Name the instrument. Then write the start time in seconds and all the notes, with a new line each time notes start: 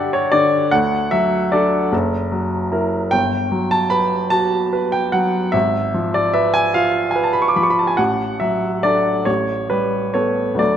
grand piano
Already playing: G2 D3 D4 G4 D5 E5 F#5 G5
0.13 C#5
0.32 D3 D5
0.71 D2 F#5
1.11 F#3 E5
1.52 D4 A4 D5
1.92 F#1
2.32 F#3
2.72 E4 A#4
3.11 G1 G5
3.51 F#3
3.71 A5
3.90 B4 B5
4.30 F#4 A5
4.73 B4
4.92 G5
5.12 F#3 F#5
5.52 G#1 E5
5.94 F3
6.14 D5
6.34 B4 E5
6.54 G#5
6.74 F4 F5
7.11 G#5
7.16 B4
7.24 A5
7.33 B5
7.42 C#6
7.48 D6
7.56 F3 B5
7.63 C#6
7.70 B5
7.79 A5
7.87 G#5
7.97 A1 F#5
8.40 F#3 E5
8.83 D4 A4 D5
9.25 A1 C#5
9.70 G3 B4
10.14 B3 A4 C#5
10.55 D2 F#3 A3 A4
10.59 D5